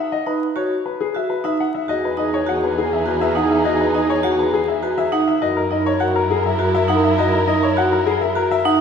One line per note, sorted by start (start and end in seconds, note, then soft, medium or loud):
0.00 0.16 E5 medium
0.12 0.31 D#5 medium
0.27 0.46 D#4 medium
0.27 0.46 B4 medium
0.56 0.75 F#4 medium
0.56 0.75 C#5 medium
0.86 1.05 B4 medium
1.01 1.19 G#4 medium
1.14 1.34 F#4 medium
1.14 1.34 E5 medium
1.30 1.49 B4 medium
1.44 1.63 D#4 medium
1.44 1.63 E5 medium
1.60 1.78 F#5 medium
1.75 1.93 E5 medium
1.88 5.25 E2 medium
1.88 5.22 D#4 medium
1.88 2.07 F#4 medium
1.88 5.22 G#4 medium
1.88 2.10 G#4 soft
1.88 2.08 D#5 medium
2.05 2.23 B4 medium
2.17 2.37 D#4 medium
2.17 2.40 G#4 soft
2.17 2.37 D#5 medium
2.34 2.52 C#5 medium
2.46 2.66 F#4 medium
2.46 2.71 G#4 medium
2.46 2.67 F#5 medium
2.64 2.81 B4 medium
2.78 2.96 G#4 medium
2.78 3.02 G#4 medium
2.93 3.11 E5 medium
3.06 3.25 F#4 medium
3.06 3.26 B4 medium
3.12 3.33 G#4 medium
3.21 3.40 E5 medium
3.35 3.54 D#4 medium
3.35 3.55 F#5 medium
3.43 3.64 G#4 medium
3.51 3.69 E5 medium
3.65 3.84 F#4 medium
3.65 3.84 D#5 medium
3.73 3.94 G#4 medium
3.81 3.99 B4 medium
3.94 4.13 D#4 medium
3.94 4.13 D#5 medium
4.03 4.25 G#4 medium
4.10 4.28 C#5 medium
4.23 4.43 F#4 medium
4.23 4.43 F#5 medium
4.34 4.56 G#4 medium
4.39 4.58 B4 medium
4.54 4.72 G#4 medium
4.64 4.86 G#4 soft
4.64 4.87 E5 medium
4.83 5.02 F#4 medium
4.83 5.02 B4 medium
4.95 5.17 G#4 soft
4.95 5.16 E5 medium
5.12 5.31 D#4 medium
5.12 5.31 F#5 medium
5.28 5.46 E5 medium
5.41 8.78 F#2 medium
5.41 8.75 E4 medium
5.41 5.60 F#4 medium
5.41 5.63 A#4 soft
5.41 8.75 A#4 medium
5.41 5.60 D#5 medium
5.57 5.75 A#4 medium
5.71 5.90 D#4 medium
5.71 5.93 A#4 medium
5.71 5.90 D#5 medium
5.86 6.05 C#5 medium
6.00 6.19 F#4 medium
6.00 6.24 A#4 medium
6.00 6.19 F#5 medium
6.16 6.34 A#4 medium
6.31 6.49 G#4 medium
6.31 6.54 A#4 medium
6.46 6.64 E5 medium
6.59 6.78 F#4 medium
6.59 6.78 A#4 medium
6.64 6.86 A#4 medium
6.75 6.93 E5 medium
6.88 7.07 D#4 medium
6.88 7.08 F#5 medium
6.96 7.17 A#4 medium
7.04 7.22 E5 medium
7.18 7.37 F#4 medium
7.18 7.37 D#5 medium
7.26 7.47 A#4 medium
7.33 7.52 A#4 medium
7.48 7.66 D#4 medium
7.48 7.66 D#5 medium
7.56 7.78 A#4 medium
7.63 7.81 C#5 medium
7.77 7.96 F#4 medium
7.77 7.96 F#5 medium
7.88 8.09 A#4 medium
7.93 8.11 A#4 medium
8.06 8.25 G#4 medium
8.19 8.40 A#4 medium
8.19 8.40 E5 medium
8.35 8.54 F#4 medium
8.35 8.55 A#4 medium
8.50 8.71 A#4 soft
8.50 8.70 E5 medium
8.65 8.81 D#4 medium
8.65 8.81 F#5 medium